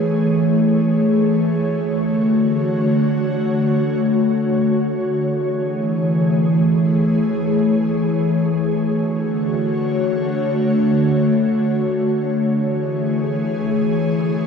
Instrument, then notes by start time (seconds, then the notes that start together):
ambient pad
Already playing: E3 A3 G#4 C#5
1.58 D3 F#4
5.19 E3 A3 G#4
8.80 D3 A3 F#4 C#5
12.41 E3 A3 G#4 C#5